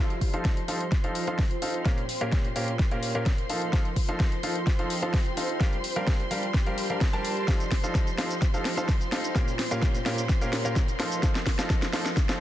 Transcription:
Already playing: F3 D#4 F4 G4 A4 C5 D5 F5 A5
0.00 C5 C6
0.10 C5, closed hi-hat
0.21 kick, open hi-hat
0.34 F3 D#4 A4 C5 F5, closed hi-hat
0.45 kick, snare, closed hi-hat
0.57 G5, closed hi-hat
0.68 F3 D#4 A4 C5 F5, open hi-hat
0.80 closed hi-hat
0.92 kick, snare, closed hi-hat
1.04 F3 D#4 A4 C5 F5, closed hi-hat
1.15 open hi-hat
1.27 F3 D#4 A4 C5 F5, closed hi-hat
1.39 kick, snare, open hi-hat
1.51 closed hi-hat
1.62 D#4 A4 C5 F5, open hi-hat
1.74 closed hi-hat
1.85 A#2 C#4 G4 A#4 F5, kick, snare, closed hi-hat
1.90 F5
1.98 closed hi-hat
2.09 open hi-hat
2.21 A#2 C#4 G4 A#4 F5, closed hi-hat
2.32 C6, kick, snare, closed hi-hat
2.45 closed hi-hat
2.56 A#2 C#4 G4 A#4 F5, open hi-hat
2.68 closed hi-hat
2.79 kick, snare, closed hi-hat
2.91 A#2 C#4 G4 A#4 F5, closed hi-hat
3.03 open hi-hat
3.15 A#2 C#4 G4 A#4 F5, closed hi-hat
3.26 kick, snare, closed hi-hat
3.38 closed hi-hat
3.50 F3 D#4 F4 A4 C5 F5, open hi-hat
3.62 closed hi-hat
3.67 C5
3.73 F3 D#4 A4 C5 F5, kick, snare, closed hi-hat
3.80 G5
3.85 closed hi-hat
3.96 kick, open hi-hat
4.09 F3 D#4 A4 C5 F5, closed hi-hat
4.20 kick, snare, closed hi-hat
4.32 closed hi-hat
4.43 F3 D#4 A4 C5 F5, open hi-hat
4.56 closed hi-hat
4.67 kick, snare, closed hi-hat
4.79 F3 D#4 A4 C5 F5, closed hi-hat
4.90 open hi-hat
5.02 F3 D#4 A4 C5 F5, closed hi-hat
5.14 kick, snare, open hi-hat
5.26 closed hi-hat
5.37 D#4 A4 C5 F5, open hi-hat
5.49 closed hi-hat
5.61 G3 D4 G4 A#4 F5, kick, snare, closed hi-hat
5.68 D5
5.73 closed hi-hat
5.84 open hi-hat
5.96 G3 D4 G4 A#4 F5, closed hi-hat
6.07 A5, kick, snare, closed hi-hat
6.20 closed hi-hat
6.31 G3 D4 G4 A#4 F5, open hi-hat
6.43 closed hi-hat
6.54 kick, snare, closed hi-hat
6.66 G3 D4 G4 A#4 F5, closed hi-hat
6.78 open hi-hat
6.90 G3 D4 G4 A#4 F5, closed hi-hat
7.01 kick, snare, closed hi-hat
7.13 G3 D4 G4 A#4 A5, closed hi-hat
7.25 open hi-hat
7.37 closed hi-hat
7.48 F3 D#4 F4 A4 C5 F5, kick, snare, closed hi-hat, shaker
7.60 closed hi-hat, shaker
7.70 C5, kick, snare, open hi-hat
7.83 F3 D#4 A4 C5 F5 G5, closed hi-hat, shaker
7.95 kick, snare, closed hi-hat, shaker
8.07 closed hi-hat, shaker
8.18 F3 D#4 A4 C5 F5, snare, open hi-hat
8.31 closed hi-hat, shaker
8.42 kick, snare, closed hi-hat, shaker
8.54 F3 D#4 A4 C5 F5, closed hi-hat, shaker
8.65 snare, open hi-hat
8.77 F3 D#4 A4 C5 F5, closed hi-hat, shaker
8.89 kick, snare, open hi-hat, shaker
9.01 closed hi-hat, shaker
9.12 D#4 A4 C5 F5, snare, open hi-hat
9.24 closed hi-hat, shaker
9.35 A#2 C#4 G4 A#4 F5, kick, snare, closed hi-hat, shaker
9.43 C6
9.48 closed hi-hat, shaker
9.59 F5, snare, open hi-hat
9.71 A#2 C#4 G4 A#4 F5, closed hi-hat, shaker
9.82 kick, snare, closed hi-hat, shaker
9.95 closed hi-hat, shaker
10.06 A#2 C#4 G4 A#4 F5, snare, open hi-hat
10.18 closed hi-hat, shaker
10.29 kick, snare, closed hi-hat, shaker
10.41 A#2 C#4 G4 A#4 F5, closed hi-hat, shaker
10.53 snare, open hi-hat
10.65 A#2 C#4 G4 A#4 F5, closed hi-hat, shaker
10.76 kick, snare, closed hi-hat, shaker
10.88 closed hi-hat, shaker
11.00 F3 D#4 F4 A4 C5 F5, snare, open hi-hat
11.12 closed hi-hat, shaker
11.21 F3 D#4 A4 C5 F5, kick, snare, closed hi-hat, shaker
11.35 snare, closed hi-hat, shaker
11.43 G5, kick, snare, open hi-hat
11.59 F3 D#4 A4 C5 F5, snare, shaker
11.70 kick, snare, closed hi-hat, shaker
11.82 snare, closed hi-hat, shaker
11.93 F3 D#4 A4 C5 F5, snare, open hi-hat
12.06 snare, closed hi-hat, shaker
12.17 kick, snare, closed hi-hat, shaker
12.29 F3 D#4 A4 C5 F5, snare, closed hi-hat, shaker

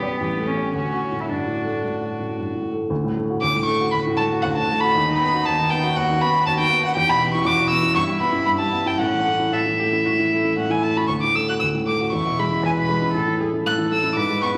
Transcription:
Already playing: B1 G3 B3 G4
0.02 G4 D5
0.20 A1 G4
0.38 A3
0.47 C#4
0.56 G4 C#5
0.74 D2 C#4 F#4
0.93 F#4
1.11 A2
1.21 E4
1.29 G2 D4 F#4
1.47 A2
1.64 A3
1.83 A2
2.01 F#4
2.20 A2
2.38 G2
2.55 A2
2.73 A3
2.90 D2
3.04 A2
3.17 A3
3.30 F#4
3.41 D2 D6
3.55 A2
3.65 A3 C#6
3.81 F#4
3.92 D2 F#4 B5
4.07 A2
4.17 A3 A5
4.32 F#4
4.42 D2 F#5
4.55 A2 A5
4.70 A3
4.80 F#4 B5
4.93 D#2 D#4
5.08 D#3
5.18 B3 B5
5.34 F#4
5.45 D#2 A5
5.59 D#3
5.70 B3 G5
5.83 F#4
5.95 D#2 F#4 F#5
6.09 D#3
6.21 B3 B5
6.34 F#4
6.45 D#2 F#4 A5
6.59 D#3 G5
6.71 B3
6.85 F#4 F#5
6.96 E2 G4 G5
7.09 B2 B5
7.22 B3
7.34 E4 C#6
7.45 E2 F#4 D6
7.59 B2
7.70 B3 E6
7.83 E4
7.94 G2 E4 C#6
8.07 G3
8.20 B3 B5
8.32 E4
8.46 G2 B5
8.59 G3 A5
8.72 B3
8.86 E4 G5
8.98 A2 C#4 F#5
9.12 E3
9.26 A3
9.39 E4
9.52 A2 A4 E5
9.66 E3
9.79 A3 G4
9.93 E4
10.05 A2 F#4
10.19 E3
10.31 A3 E4
10.44 E4
10.57 A2 C#4 F#5
10.69 E3 E4 G#5
10.83 A3 A5
10.96 E4 F#4 B5
11.07 D2 C#6
11.22 A2 D6
11.35 A3 E6
11.48 F#4 F#6
11.60 D2 E6
11.74 A2
11.87 A3 D6
12.01 F#4
12.13 E2 E4 C#6
12.27 B2
12.39 G#3 B5
12.51 E4
12.64 E2 B4 G#5
12.76 B2 B5
12.89 G#3
13.02 E4
13.14 A2 A4
13.28 E3
13.40 A3 G#4
13.53 E4
13.65 A2 A4 F#6
13.78 E3
13.91 A3 E6
14.03 E4
14.16 G#2 B4 D6
14.30 G#3
14.42 B3 C#6
14.54 E4

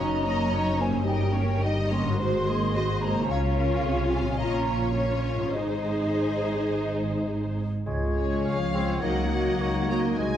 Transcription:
Already playing: F#1 F#2 C#4 D#4 A#4 D#5 A#5
0.24 A#3 C#4 C#5 D#5
0.51 C#4 D#4 C#5 D#5
0.77 A#3 C#4 C5 C#5 G#5
0.88 G2
0.93 C#4
0.97 D#4
1.02 G3 D#4 A#4 D#5
1.07 G1 G2 A#4 G5
1.33 A#3 C#4 C#5
1.61 G3 D#4 D#5
1.91 A#3 C#4 C#5 C6
2.01 G#2
2.05 D#4
2.10 F#4
2.14 A#4 C5
2.19 G#1 G#2 G#3 F#4 C5
2.46 A#3 G#4 D#5
2.74 G#3 F#4 C5 D#5
3.02 A#3 G#4 C5 D#5 A#5
3.11 C#3
3.16 C#4
3.20 F4
3.25 C#5
3.29 C#2 C#3 C#4 F4 C#5 F5
3.56 A#4
3.84 C2 C3 G#4
4.11 F5 G#5
4.20 A#2
4.25 C#4
4.29 F4
4.34 C#5
4.39 A#1 A#2 C#4 F4 C#5 D#5 A#5
4.67 C#5
4.95 C#4 F4 C#5
5.34 G#2
5.39 D#4
5.43 G#4
5.48 C5
5.53 G#1 G#2 D#4 G#4 C5 D#5
7.86 C#2 C#3 G#3 F4 C#5 G#6
8.06 C#4
8.15 G#3 C#4 G#4 C#5
8.26 G#4
8.45 C#2 F3 C#4 C#5 F5 G#6
8.65 C#4
8.73 G#3 C4 C#4 G#4 C#5
8.84 G#3
9.02 C#2 C#3 F#3 A#3 D#4 F#4 A#4 D#5 F#5
9.23 A#3
9.31 F#3 F#4 A#4 D#5
9.41 F#4
9.61 C#2 A#3 C#5 D#5
9.80 A#3
9.89 F#3 A#3 F#4 A#4 C#5 D#5 A#5
9.99 C#4
10.18 C2 C3 G#3 D#5 G#5

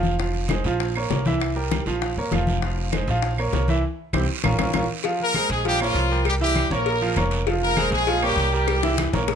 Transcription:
Already playing: F1 F3 F4 F5
0.03 high bongo, high conga, short guiro
0.19 F3 F4 F5, high bongo, high conga, long guiro
0.34 high bongo, high conga
0.49 G#3 G#4 C5, high bongo, high conga, short guiro, claves
0.64 A#1 F3 F4 F5, high bongo, high conga, short guiro
0.80 high bongo, high conga, long guiro
0.95 A#3 A#4 C#5, high conga, claves
1.10 C2 A#3 A#4 C#5, high bongo, low bongo, high conga, short guiro
1.25 E3 E4 E5, high bongo, high conga, short guiro
1.40 high bongo, long guiro, claves
1.55 G3 G4 A#4, high bongo, high conga
1.71 high bongo, high conga, short guiro, claves
1.86 A#1 F3 F4 F5, high bongo, high conga, short guiro
2.02 high bongo, high conga, long guiro
2.17 G1 A#3 A#4 C#5, high conga
2.31 F1 F3 F4 F5, high bongo, low bongo, high conga, short guiro, claves
2.47 high bongo, high conga, short guiro
2.62 F3 F4 F5, high bongo, high conga, long guiro
2.78 high bongo, high conga
2.93 G#3 G#4 C5, high bongo, high conga, short guiro, claves
3.07 A#1 F3 F4 F5, high bongo, high conga, short guiro
3.23 high bongo, high conga
3.37 A#3 A#4 C#5, high conga, claves
3.53 C2 A#3 A#4 C#5, high bongo, low bongo, high conga, short guiro
3.68 E3 E4 E5, high bongo, high conga, short guiro
4.13 C2 C4 E4 G4, high bongo, high conga, long guiro, claves
4.44 A#1 C#4 F4 A#4, high bongo, high conga, claves
4.58 A#1 C#4 F4 A#4, high bongo, high conga, long guiro, claves
4.74 A#1 C#4 F4 A#4, high bongo, high conga, long guiro, claves
5.04 F3 F4 F5, cowbell, high conga, long guiro
5.20 A#3 A#4, high conga
5.34 G#3 G#4 C5, cowbell, high conga, short guiro, claves
5.49 A#1 G#3 G#4, cowbell, high conga, short guiro
5.65 F3 G3 F4 G4 F5, cowbell, high conga, long guiro
5.80 F3 A#3 F4 A#4 C#5, high conga, claves
5.94 C2, cowbell, high conga, short guiro
6.10 G3 G4 A#4, short guiro
6.25 G3 G4, cowbell, high conga, long guiro, claves
6.41 E3 G3 E4 G4 E5, high conga
6.56 cowbell, high conga, short guiro, claves
6.70 A#1 A#3 A#4 C#5, high conga, short guiro
6.86 cowbell, high conga, long guiro
7.01 F3 F4 F5, high conga
7.16 F1 A#3 A#4 C#5, cowbell, high conga, short guiro, claves
7.31 cowbell, short guiro
7.47 F3 F4 F5, cowbell, high conga, long guiro
7.62 A#3 A#4, high conga
7.77 G#3 G#4 C5, cowbell, high conga, short guiro, claves
7.91 A#1 G#3 G#4, cowbell, high conga, short guiro
8.07 F3 F4 F5, cowbell, high conga, long guiro
8.22 G3 A#3 G4 A#4 C#5, high conga, claves
8.36 C2, cowbell, high conga, short guiro
8.53 G3 G4 A#4, short guiro
8.68 cowbell, high bongo, high conga, long guiro, claves
8.83 E3 E4 E5, high bongo, high conga
8.98 cowbell, high bongo, high conga, short guiro, claves
9.13 A#1 A#3 A#4 C#5, high bongo, high conga, short guiro
9.28 cowbell, low bongo, high conga, long guiro

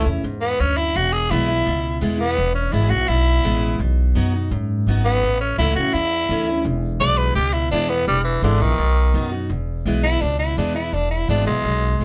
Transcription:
Already playing: A2
0.06 E2 C#4 E4
0.24 E2 G#2
0.41 B3
0.60 D2 F#2 C#4
0.77 E4
0.96 E1 E2 F#4
1.13 G#4
1.31 B1 E3 G#3 B3 E4
1.48 B3 E4
1.66 C#2 B2
2.01 E2 E3 G#3 B3 E4
2.18 B3 E4
2.37 E1 E2
2.55 C#4
2.72 G#1 E3 G#3 B3 E4
2.90 B1 B3 E4 F#4
3.08 B1 B2 E4
3.43 A1 E3 G#3 B3 E4
3.79 B1 B2
4.15 F#2 F#3 B3 D#4 F#4
4.33 D#4 F#4
4.51 F#2 G#2
4.87 G#1 F#3 B3 D#4 F#4
5.05 B3
5.22 A1 A2
5.41 C#4
5.59 C#2 E3 A3 C#4 E4
5.76 E2 C#4 E4 F#4
5.94 E2 E4
6.29 D2 E3 A3 C#4 E4
6.47 C#4 E4
6.64 E1 E2
7.00 B1 E3 G#3 B3 E4 D5
7.18 B4
7.35 C#2 B2 G4
7.53 E4
7.71 E2 E3 G#3 B3 D4 E4
7.89 B3 E4
8.07 E1 E2 G3
8.24 E3
8.42 G#1 D3 E3 G#3 B3 E4
8.60 A#1 D#3 B3 E4
8.78 B1 B2
9.14 F#2 F#3 B3 D#4 F#4
9.32 D#4 F#4
9.49 E1 E2
9.86 B1 E3 G#3 B3 E4
10.04 B3 E4
10.21 C#2 B2 D4
10.39 E4
10.57 E2 E3 G#3 B3 D4 E4
10.75 B3 E4
10.93 E1 E2 D4
11.11 E4
11.28 G#1 E3 G#3 B3 D4 E4
11.46 B1 G#3 B3 E4
11.64 B1 B2
12.00 B1 E3 G#3

